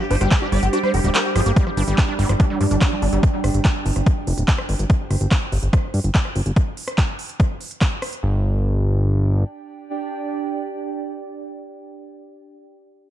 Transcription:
Already playing: G3 D4 G4 C5 F5
0.00 F3 G4
0.11 G1 D4 C5, open hi-hat
0.21 G1 G3 G4, cross-stick, closed hi-hat
0.31 F3 G#4, kick, clap, closed hi-hat
0.42 D4 G4
0.52 G1 G3 D5, open hi-hat
0.63 G1 F3 G4, closed hi-hat
0.73 D4 G4, cross-stick, closed hi-hat
0.83 G3 C5
0.94 F1 G4, open hi-hat
1.04 D1 G3 G4, closed hi-hat
1.15 G3 A#4, clap, closed hi-hat
1.25 G4
1.36 G1 F3 G#4, cross-stick, open hi-hat
1.46 G1 A#3 G4, closed hi-hat
1.56 G3 D4, kick, closed hi-hat
1.67 F3, cross-stick
1.73 G4
1.77 G1 D4, open hi-hat
1.88 G1 G3 D5, closed hi-hat
1.98 kick, clap, closed hi-hat
2.08 D4
2.15 G5
2.19 G1 G3, open hi-hat
2.29 G1 F3, cross-stick, closed hi-hat
2.40 D4, kick, closed hi-hat
2.50 G3
2.61 G2 F3, open hi-hat
2.71 G1 D4, closed hi-hat
2.81 G3, kick, cross-stick, clap, closed hi-hat
2.92 F3
3.02 G1 D4, open hi-hat
3.13 G1 G3, closed hi-hat
3.23 kick, closed hi-hat
3.44 G1, cross-stick, open hi-hat
3.54 G1, closed hi-hat
3.65 kick, clap, closed hi-hat
3.86 G1, open hi-hat
3.96 G1, cross-stick, closed hi-hat
4.06 kick, closed hi-hat
4.27 F1, open hi-hat
4.38 D1, closed hi-hat
4.48 kick, clap, closed hi-hat
4.59 cross-stick
4.63 C5
4.69 G1, open hi-hat
4.79 G1, closed hi-hat
4.90 kick, closed hi-hat
5.11 G1, cross-stick, open hi-hat
5.21 G1, closed hi-hat
5.31 kick, clap, closed hi-hat
5.52 G1, open hi-hat
5.63 G1, closed hi-hat
5.73 kick, cross-stick, closed hi-hat
5.94 G2, open hi-hat
6.04 G1, closed hi-hat
6.15 kick, clap, closed hi-hat
6.25 cross-stick
6.36 G1, open hi-hat
6.46 G1, closed hi-hat
6.56 kick, closed hi-hat
6.77 open hi-hat
6.88 cross-stick, closed hi-hat
6.98 kick, clap, closed hi-hat
7.19 open hi-hat
7.29 closed hi-hat
7.40 kick, cross-stick, closed hi-hat
7.61 open hi-hat
7.71 closed hi-hat
7.81 kick, clap, closed hi-hat
8.02 cross-stick, open hi-hat
8.13 closed hi-hat
8.23 G1 D4
8.29 G4
8.36 D5
8.42 G5

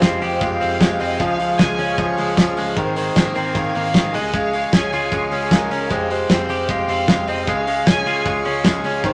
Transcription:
Already playing: F3 G#3 C5 F5 G5
0.01 F1 F2 C3 F3 G#3 C4 F4 G4, kick, snare, hi-hat pedal, ride, tambourine
0.21 F1 F3 G#3 F4 G4, open hi-hat, tambourine
0.41 F1 F3 G#3 F4 G4 F5, kick, hi-hat pedal, ride, tambourine
0.60 F1 F3 G#3 C4 F4 G4, open hi-hat, tambourine
0.80 F1 F2 C3 F3 G#3 F4 G4, kick, snare, hi-hat pedal, ride, tambourine
0.99 F1 C4 D#5, open hi-hat, tambourine
1.18 C#2 C#3 F3 G#3 F4 G#4 F5 C#6, kick, hi-hat pedal, ride, tambourine
1.39 F3 G#3 F4 G#4, open hi-hat, tambourine
1.58 C#2 C#3 F3 G#3 F4 G#4 G#5, kick, snare, hi-hat pedal, ride, tambourine
1.78 C#2 G#3 C#4 F4 G#4, open hi-hat, tambourine
1.98 C#2 F3 G#3 F4 G#4, kick, hi-hat pedal, ride
2.17 C#2 G#3 F4 G#4, open hi-hat, tambourine
2.37 C#2 C#3 F3 G#3 F4 G#4, kick, snare, hi-hat pedal, ride, tambourine
2.57 C#2 G#3, open hi-hat, tambourine
2.76 G#1 D#3 G#3 C4 D#4 A#4 C5 G#5 C6, kick, hi-hat pedal, ride, tambourine
2.95 D#3 C4 D#4 A#4 C5, open hi-hat, tambourine
3.14 G#1 G#3 C4 D#4 A#4, kick, snare, hi-hat pedal, ride, tambourine
3.26 A#3
3.34 G#1 C4 D#4 A#4, open hi-hat, tambourine
3.54 G#1 D#3 G#3 C4 D#4 A#4 F5, kick, hi-hat pedal, ride, tambourine
3.73 G#1 A#3 C4 D#4 A#4, open hi-hat, tambourine
3.93 G#1 D#3 G#3 C4 D#4 A#4, kick, snare, hi-hat pedal, ride, tambourine
4.12 C#2 C#3 F3 G#3 C#4 G#4 D#5 F5 C#6, open hi-hat, tambourine
4.33 G#3 F5, kick, hi-hat pedal, ride, tambourine
4.52 G#3 C#4 G#4, open hi-hat, tambourine
4.72 C#2 C#3 F3 G#3 C#4 G#4 G#5, kick, snare, hi-hat pedal, ride, tambourine
4.91 C#2 G#3 C#4 F4 G#4, open hi-hat, tambourine
5.10 C#2 F3 G#3 C#4 G#4, kick, hi-hat pedal, ride, tambourine
5.30 C#2 G#3 C#4 G#4, open hi-hat, tambourine
5.50 C#2 C#3 F3 G#3 C#4 G#4 A#4, kick, snare, hi-hat pedal, ride, tambourine
5.71 C#2 C#4, open hi-hat, tambourine
5.90 F1 F2 C3 F3 G#3 C4 G4 C5 G5, kick, hi-hat pedal, ride, tambourine
6.09 F3 G#3 C4 G4 C5, open hi-hat, tambourine
6.29 F1 F2 C3 F3 G#3 C4 G4, kick, snare, hi-hat pedal, ride, tambourine
6.48 F1 F3 G#3 C4 G4, open hi-hat, tambourine
6.68 F1 F3 G#3 C4 G4 F5, kick, hi-hat pedal, ride
6.87 F1 F3 G#3 C4 G4, open hi-hat, tambourine
7.07 F1 F2 C3 F3 G#3 C4 G4, kick, snare, hi-hat pedal, ride, tambourine
7.28 F1 C4 D#5, open hi-hat, tambourine
7.47 C#2 C#3 F3 G#3 C#4 G#4 F5 C#6, kick, hi-hat pedal, ride, tambourine
7.66 G#3 C#4 G#4, open hi-hat, tambourine
7.86 C#2 C#3 F3 G#3 C#4 G#4 G#5, kick, snare, hi-hat pedal, ride, tambourine
8.05 C#2 G#3 C#4 F4 G#4, open hi-hat, tambourine
8.24 C#2 F3 G#3 C#4 G#4, kick, hi-hat pedal, ride, tambourine
8.44 C#2 G#3 C#4 G#4, open hi-hat
8.64 C#2 C#3 F3 G#3 C#4 G#4, kick, snare, hi-hat pedal, ride, tambourine
8.84 C#2 C#4, open hi-hat, tambourine
9.03 G#1 D#3 G#3 C4 D#4 A#4 C5 G#5 C6, kick, hi-hat pedal, ride, tambourine

